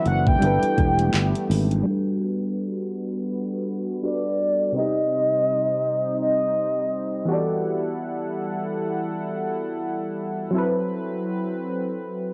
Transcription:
0.00 1.82 E3 medium
0.00 0.37 F#3 medium
0.00 0.38 C4 medium
0.00 0.40 C4 medium
0.00 1.83 D4 medium
0.00 0.39 E4 medium
0.00 0.40 F#4 loud
0.00 0.40 A4 medium
0.00 0.40 B4 medium
0.00 0.41 B4 medium
0.06 0.37 F#1 loud
0.06 0.26 F#5 loud
0.06 closed hi-hat soft
0.27 1.47 G5 medium
0.27 kick loud
0.39 0.60 G1 loud
0.39 1.82 G3 medium
0.39 1.85 A3 medium
0.39 1.85 B3 medium
0.39 1.83 D4 medium
0.39 1.85 G4 medium
0.39 closed hi-hat medium
0.43 1.84 E4 medium
0.43 1.85 A4 medium
0.43 1.86 B4 medium
0.63 closed hi-hat medium
0.78 1.09 E1 medium
0.78 kick medium
0.78 closed hi-hat soft
0.99 closed hi-hat medium
1.14 1.32 G1 loud
1.14 clap loud
1.14 closed hi-hat medium
1.36 closed hi-hat medium
1.50 1.81 G#1 medium
1.50 open hi-hat medium
1.71 closed hi-hat medium
1.83 3.98 G3 medium
1.83 4.73 G3 medium
1.83 4.73 B3 medium
1.83 3.99 D4 medium
1.83 4.73 F#4 medium
1.83 4.00 F#4 medium
1.83 4.73 B4 medium
1.89 4.01 A4 medium
1.89 4.02 B4 medium
4.02 4.75 G3 soft
4.02 4.75 D4 soft
4.02 4.76 F#4 soft
4.02 4.76 A4 soft
4.02 4.77 B4 soft
4.02 4.72 D5 loud
4.72 7.23 C3 medium
4.72 10.50 G3 medium
4.72 7.24 C4 medium
4.72 7.26 C4 medium
4.72 7.26 D#4 medium
4.72 7.25 D#4 medium
4.72 7.26 C5 medium
4.77 7.26 G4 medium
4.77 6.17 D#5 loud
4.77 7.27 D#5 medium
6.22 7.25 D#5 medium
7.25 10.12 E3 medium
7.25 10.13 B3 medium
7.25 12.34 E4 medium
7.25 10.14 F#4 medium
7.25 10.51 A4 medium
7.25 10.51 F#5 medium
7.30 10.14 G4 medium
7.30 10.15 A4 medium
7.30 10.16 D5 medium
10.51 12.34 F#3 medium
10.51 12.34 C4 medium
10.51 12.34 E4 medium
10.51 12.34 B4 medium
10.56 12.34 A4 medium
10.56 12.34 B4 medium

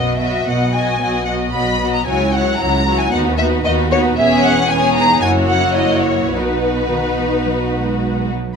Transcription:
0.00 0.41 B1 soft
0.00 0.41 B2 soft
0.00 0.20 F#3 soft
0.00 0.19 B3 soft
0.00 0.20 F#4 soft
0.00 0.18 D#5 medium
0.00 0.20 D#5 soft
0.18 0.46 F#3 soft
0.18 0.46 B3 soft
0.18 0.47 F#4 soft
0.18 0.47 D#5 soft
0.18 0.46 E5 medium
0.46 0.95 B1 soft
0.46 0.94 B2 soft
0.46 0.73 F#3 soft
0.46 0.74 B3 soft
0.46 0.73 F#4 soft
0.46 0.73 D#5 soft
0.46 0.74 F#5 medium
0.72 1.00 F#3 soft
0.72 1.00 B3 soft
0.72 1.00 F#4 soft
0.72 1.00 D#5 soft
0.72 1.27 G#5 medium
1.01 1.48 B1 soft
1.01 1.48 B2 soft
1.01 1.27 F#3 soft
1.01 1.27 B3 soft
1.01 1.27 F#4 soft
1.01 1.27 D#5 soft
1.25 1.54 F#3 soft
1.25 1.54 B3 soft
1.25 1.54 F#4 soft
1.25 1.54 D#5 soft
1.25 1.33 F#5 medium
1.51 2.01 B1 soft
1.51 2.01 B2 soft
1.51 1.81 F#3 soft
1.51 1.81 B3 soft
1.51 1.80 F#4 soft
1.51 1.80 D#5 soft
1.51 1.92 B5 medium
1.81 2.07 F#3 soft
1.81 2.07 B3 soft
1.81 2.06 F#4 soft
1.81 2.07 D#5 soft
1.94 2.07 A#5 medium
2.06 2.54 C#2 soft
2.06 2.54 C#2 medium
2.06 2.34 F#3 soft
2.06 2.34 E4 soft
2.06 2.33 F#4 soft
2.06 2.33 C#5 soft
2.06 2.33 G#5 medium
2.33 2.60 F#3 soft
2.33 2.60 E4 soft
2.33 2.59 F#4 soft
2.33 2.58 C#5 soft
2.33 2.60 F#5 medium
2.59 3.07 C#2 medium
2.59 2.87 F#3 soft
2.59 2.87 E4 soft
2.59 2.85 F#4 soft
2.59 2.85 C#5 soft
2.59 2.99 A#5 medium
2.86 3.13 F#3 soft
2.86 3.13 E4 soft
2.86 3.11 F#4 soft
2.86 3.12 C#5 soft
2.99 3.13 G#5 medium
3.11 3.59 D#2 medium
3.11 3.38 B3 soft
3.11 3.38 D#4 soft
3.11 3.39 F#4 soft
3.11 3.39 B4 soft
3.11 3.19 F#5 medium
3.37 3.64 B3 soft
3.37 3.64 D#4 soft
3.37 3.65 F#4 soft
3.37 3.65 B4 soft
3.37 3.45 E5 medium
3.65 4.12 D#2 medium
3.65 4.13 D#2 medium
3.65 3.91 B3 medium
3.65 3.91 D#4 medium
3.65 3.91 F#4 medium
3.65 3.90 B4 medium
3.65 3.73 D#5 medium
3.91 4.17 B3 medium
3.91 4.18 D#4 medium
3.91 4.18 F#4 medium
3.91 4.18 B4 medium
3.91 4.00 C#5 medium
4.17 5.20 E1 medium
4.17 5.20 E2 medium
4.17 4.67 B3 medium
4.17 4.67 C#4 medium
4.17 4.68 G#4 medium
4.17 4.68 C#5 medium
4.17 4.44 E5 medium
4.44 4.71 F#5 medium
4.69 5.23 B3 medium
4.69 4.97 C#4 medium
4.69 5.22 G#4 medium
4.69 5.22 C#5 medium
4.69 4.96 G#5 medium
4.96 5.23 D#4 medium
4.96 5.22 A#5 medium
5.21 6.31 F#1 medium
5.21 6.31 F#2 medium
5.21 6.34 A#3 medium
5.21 6.34 E4 medium
5.21 6.31 F#4 medium
5.21 6.31 C#5 medium
5.21 5.29 G#5 medium
5.48 5.76 F#5 medium
5.76 6.04 D#5 medium
6.03 6.32 C#5 medium
6.30 8.31 B1 soft
6.30 6.83 B2 soft
6.30 8.35 B3 soft
6.30 8.36 D#4 soft
6.30 8.31 F#4 soft
6.30 6.39 B4 soft
6.30 8.35 B4 soft
6.38 6.47 A#4 soft
6.45 7.99 B4 medium
6.89 6.97 D#3 soft
7.17 7.25 E3 soft
7.45 7.53 F#3 soft
7.73 8.27 G#3 soft
8.29 8.56 F#3 soft

